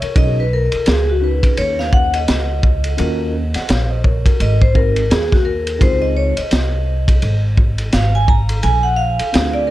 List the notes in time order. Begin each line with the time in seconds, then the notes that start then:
0.02 A#4 C#5, muted upright bass stroke, ride
0.16 B1 C#4 D#4 F#4 G#4 D#5, kick, ride
0.40 B4
0.53 A#4
0.72 muted upright bass stroke, ride
0.86 C#2 G#4, snare, hi-hat pedal, ride
1.10 F#4
1.21 C#4 D#4 F#4 B4
1.43 muted upright bass stroke, kick, ride
1.57 D#2 C#5, ride
1.79 F5, snare
1.93 F#5, kick
2.14 D#5, ride
2.28 C#2, snare, hi-hat pedal, ride
2.63 kick
2.84 ride
2.98 D#2 C#4 F4 F#4 A#4, ride
3.54 D#5 F#5, muted upright bass stroke, snare, ride
3.69 A#1 C#5 F5, snare, hi-hat pedal, ride
3.90 C5 D#5
4.04 A#4 C#5, kick
4.26 F#4 A#4, muted upright bass stroke, kick, ride
4.40 G#1 D#5, ride
4.61 C5, kick
4.74 C4 D#4 F#4 A#4, kick
4.96 ride
5.10 D#2 G#4, snare, hi-hat pedal, ride
5.32 F#4, kick, snare
5.45 A#4
5.67 ride
5.79 C#2 C4 D#4 F4 G#4 C5, kick, ride
6.02 D#5
6.17 C#5
6.37 D#5, muted upright bass stroke, ride
6.51 C2, snare, hi-hat pedal, ride
7.08 kick, ride
7.22 G#1, ride
7.57 kick
7.78 ride
7.93 G#1 F5, snare, hi-hat pedal, ride
8.15 G#5
8.28 A#5, kick
8.49 ride
8.63 A#1 G#5, ride
8.83 F#5
8.96 F5
9.19 muted upright bass stroke, ride
9.33 D2 C4 D4 F4 G#4, snare, hi-hat pedal, ride
9.53 D5
9.67 A#4